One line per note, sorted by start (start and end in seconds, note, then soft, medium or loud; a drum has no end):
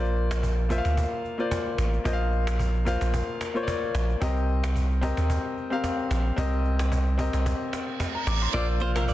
0.00 0.81 A#1 loud
0.00 0.61 A#3 medium
0.00 0.62 F4 medium
0.00 0.62 C5 medium
0.00 0.63 D5 medium
0.04 cajon slap soft
0.16 cajon slap soft
0.31 cajon slap loud
0.43 cajon bass loud
0.58 cajon slap soft
0.69 1.30 A#3 medium
0.69 1.31 F4 medium
0.69 1.31 C5 medium
0.69 0.78 E5 medium
0.69 cajon bass medium
0.78 1.35 F5 medium
0.85 1.06 D2 medium
0.85 cajon slap medium
0.97 cajon bass loud
1.12 cajon slap soft
1.25 cajon slap soft
1.38 1.98 A#3 medium
1.38 1.98 F4 medium
1.38 1.99 C5 medium
1.38 1.99 D5 medium
1.38 cajon slap soft
1.51 cajon bass medium
1.51 cajon slap medium
1.67 cajon slap soft
1.78 1.99 A1 medium
1.78 cajon slap medium
1.93 cajon slap soft
2.04 2.97 A#1 loud
2.04 2.78 A#3 medium
2.04 2.78 F4 medium
2.04 2.79 C5 medium
2.04 2.13 D#5 medium
2.04 cajon bass loud
2.13 2.82 F5 medium
2.20 cajon slap soft
2.32 cajon slap soft
2.47 cajon slap loud
2.59 cajon bass loud
2.74 cajon slap soft
2.85 3.46 A#3 medium
2.85 3.47 F4 medium
2.85 3.47 C5 medium
2.85 3.48 F5 medium
2.85 cajon bass medium
3.01 3.22 A#1 medium
3.01 cajon slap medium
3.14 cajon bass loud
3.28 cajon slap soft
3.41 cajon slap medium
3.54 4.14 A#3 medium
3.54 4.15 F4 medium
3.54 4.15 C5 medium
3.54 3.62 C#5 medium
3.54 cajon slap soft
3.63 4.19 D5 medium
3.68 cajon bass medium
3.68 cajon slap medium
3.83 cajon slap soft
3.95 4.15 A#1 loud
3.95 cajon slap medium
4.10 cajon slap soft
4.20 5.14 C2 loud
4.20 4.94 C4 medium
4.20 4.94 G4 medium
4.20 4.95 A#4 medium
4.20 4.95 D#5 medium
4.20 cajon bass loud
4.37 cajon slap soft
4.48 cajon slap soft
4.64 cajon slap loud
4.76 cajon bass loud
4.90 cajon slap soft
5.01 5.63 C4 medium
5.01 5.63 G4 medium
5.01 5.64 A#4 medium
5.01 5.64 D#5 medium
5.01 cajon bass medium
5.17 5.38 D#2 medium
5.17 cajon slap medium
5.30 cajon bass loud
5.45 cajon slap soft
5.57 cajon slap soft
5.70 6.30 C4 medium
5.70 6.31 G4 medium
5.70 6.31 A#4 medium
5.70 6.32 F5 medium
5.70 cajon slap soft
5.84 cajon bass medium
5.84 cajon slap medium
5.99 cajon slap soft
6.11 6.32 A#1 medium
6.11 cajon slap medium
6.26 cajon slap soft
6.36 7.30 C2 loud
6.36 7.10 C4 medium
6.36 7.11 G4 medium
6.36 7.11 A#4 medium
6.36 7.11 D#5 medium
6.36 cajon bass loud
6.53 cajon slap soft
6.64 cajon slap soft
6.79 cajon slap loud
6.92 cajon bass loud
7.06 cajon slap soft
7.18 7.79 C4 medium
7.18 7.79 G4 medium
7.18 7.80 A#4 medium
7.18 7.80 D#5 medium
7.18 cajon bass medium
7.33 7.54 C2 medium
7.33 cajon slap medium
7.46 cajon bass loud
7.46 reverse cymbal medium
7.61 cajon slap soft
7.73 cajon slap medium
7.88 cajon slap soft
8.00 cajon bass medium
8.00 cajon slap medium
8.15 8.26 A#5 medium
8.15 cajon slap soft
8.27 8.48 A1 medium
8.27 8.41 D6 medium
8.27 cajon slap medium
8.42 8.68 C6 medium
8.42 cajon slap soft
8.53 9.13 A#1 loud
8.53 9.13 C3 medium
8.53 9.13 F3 medium
8.53 8.78 A#3 medium
8.53 9.13 A#3 medium
8.53 8.66 A#3 loud
8.53 9.13 D4 medium
8.53 8.66 D4 loud
8.53 8.78 F4 medium
8.53 8.66 F4 loud
8.53 8.79 C5 medium
8.53 8.66 D5 loud
8.53 8.79 D5 medium
8.53 cajon bass loud
8.53 high agogo medium
8.69 cajon slap soft
8.80 8.93 A#3 medium
8.80 8.94 F4 medium
8.80 8.91 C5 medium
8.80 8.95 C5 medium
8.80 8.95 F5 loud
8.80 cajon slap soft
8.95 9.06 F3 medium
8.95 9.13 A#3 medium
8.95 9.06 C4 medium
8.95 9.06 D4 medium
8.95 9.13 F4 medium
8.95 9.04 A#4 medium
8.95 9.06 C5 medium
8.95 9.13 C5 medium
8.95 9.13 F5 loud
8.95 cajon slap loud
8.95 high agogo medium
9.08 9.13 D5 medium
9.08 cajon bass loud